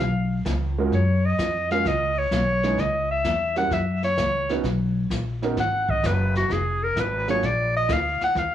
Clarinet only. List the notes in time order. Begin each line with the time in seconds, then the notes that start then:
Already playing: F5
0.94 C#5
1.26 D#5
1.72 F5
1.88 D#5
2.18 C#5
2.80 D#5
3.11 E5
3.57 F#5
3.73 E5
4.04 C#5
5.60 F#5
5.90 D#5
6.06 B4
6.37 F#4
6.53 G#4
6.84 A#4
7.00 B4
7.30 C#5
7.46 D5
7.77 D#5
7.93 F5
8.23 F#5
8.39 F5